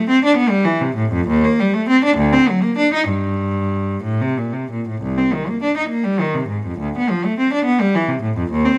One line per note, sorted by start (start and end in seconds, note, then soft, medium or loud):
0.09 0.22 C4 medium
0.25 0.37 D4 medium
0.37 0.51 B3 medium
0.50 0.65 G3 medium
0.65 0.80 E3 medium
0.81 0.96 C3 medium
0.96 1.11 A2 medium
1.12 1.27 F2 medium
1.28 1.42 D#2 medium
1.45 1.58 A#3 medium
1.60 1.73 G3 medium
1.74 1.87 A3 medium
1.89 2.02 C4 medium
2.05 2.18 D4 medium
2.17 2.31 D2 medium
2.33 2.47 C4 medium
2.49 2.63 F#3 medium
2.62 2.78 A#3 medium
2.78 2.93 D4 medium
2.94 3.09 D#4 medium
3.09 4.03 G2 medium
4.04 4.20 A2 medium
4.22 4.38 C3 medium
4.38 4.54 A#2 soft
4.53 4.70 C3 soft
4.71 4.87 A#2 soft
4.88 5.02 A2 soft
5.02 5.16 C2 medium
5.18 5.32 C4 soft
5.33 5.46 D#3 soft
5.48 5.61 A#3 soft
5.63 5.75 D4 medium
5.77 5.90 D#4 soft
5.89 6.03 A#3 soft
6.04 6.18 G3 medium
6.20 6.34 D#3 soft
6.34 6.49 C3 medium
6.49 6.64 G#2 soft
6.67 6.81 F2 medium
6.79 6.94 D2 medium
6.98 7.11 B3 medium
7.10 7.24 F3 medium
7.25 7.38 A3 medium
7.39 7.52 C4 medium
7.53 7.66 D4 medium
7.65 7.79 B3 medium
7.81 7.94 G3 medium
7.95 8.08 E3 medium
8.08 8.22 C3 medium
8.22 8.35 A2 medium
8.37 8.50 F2 medium
8.51 8.64 D#2 medium
8.65 8.78 C4 medium